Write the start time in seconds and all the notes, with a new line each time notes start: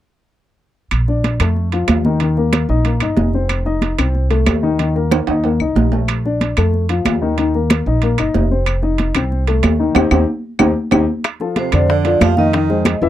0.91 A#1, high conga, high timbale, claves
1.08 D4 D5, high conga
1.24 high conga, high timbale, low timbale
1.40 F2 A3 A4, high conga, high timbale, claves
1.56 high conga
1.72 F3 F4, high conga, high timbale
1.88 D#2, high conga, high timbale, low timbale, claves
2.05 D#3 D#4, high conga
2.20 D#3 D#4, high conga, high timbale
2.37 A#3 A#4, high conga
2.53 high conga, high timbale, low timbale, claves
2.69 A#1 D#4 D#5, high conga
2.85 A#3 A#4, high conga, high timbale
3.00 G1 D#4 D#5, high conga, high timbale, claves
3.17 F1, high conga, low timbale
3.33 C4 C5, high conga
3.49 high conga, high timbale, claves
3.66 D#4 D#5, high conga
3.82 high conga, high timbale, low timbale
3.98 C2 C4 C5, high conga, high timbale, claves
4.15 high conga
4.30 A3 A4, high conga, high timbale
4.46 D#2, high conga, high timbale, low timbale, claves
4.63 D#3 D#4
4.79 D#3 D#4, high conga, high timbale
4.96 A#3 A#4, high conga
5.11 high conga, high timbale, claves
5.27 D#2 D#4 D#5, high conga, high timbale
5.44 A#3 A#4, high conga, high timbale
5.60 C2 D#4 D#5, high conga, claves
5.76 A#1, high conga, low timbale
5.92 A3 A4, high conga, low timbale
6.08 high conga, high timbale, claves
6.26 D4 D5, high conga
6.41 high conga, high timbale, low timbale
6.57 F2 A3 A4, high conga, high timbale, claves
6.74 high conga
6.89 F3 F4, high conga, high timbale
7.05 D#2, high conga, high timbale, low timbale, claves
7.22 D#3 D#4
7.38 D#3 D#4, high conga, high timbale
7.54 A#3 A#4, high conga
7.70 high conga, high timbale, low timbale, claves
7.86 A#1 D#4 D#5, high conga
8.02 A#3 A#4, high conga, high timbale
8.18 G1 D#4 D#5, high conga, high timbale, claves
8.34 F1, high conga, low timbale
8.51 C4 C5, high conga
8.66 high conga, high timbale, claves
8.82 D#4 D#5, high conga
8.98 high conga, high timbale, low timbale
9.15 C2 C4 C5, high conga, high timbale, claves
9.32 high conga
9.47 A3 A4, high conga, high timbale
9.63 D#2, high conga, high timbale, low timbale, claves
9.79 D#3 D#4
9.95 D#2 C4 D#4 G4, high conga, high timbale, claves
10.11 D#2 C4 D#4 G4, high conga, high timbale, claves
10.59 D#2 C4 D#4 G4, high conga, high timbale, claves
10.91 D#2 C4 D#4 G4, high conga, high timbale, claves
11.24 high bongo, high conga, high timbale, claves
11.40 F3 F4 A4, high bongo, high conga
11.56 C3 C5, high bongo, high conga, high timbale, low timbale
11.72 F2 D3 D4 D5, high bongo, high conga, high timbale, claves
11.88 D3 D5, high bongo, high conga
12.05 F3 F4 A4, high bongo, high conga, high timbale
12.21 F2 F3 F5, high bongo, low bongo, high conga, high timbale, low timbale, claves
12.37 D#3 D#4 D#5, high conga
12.53 D#3 D#4 D#5, high bongo, high timbale
12.70 G#3 G#4 C5, high bongo, high conga
12.85 high bongo, high conga, high timbale, low timbale, claves
13.02 E2 E3 E4 E5, high bongo, high conga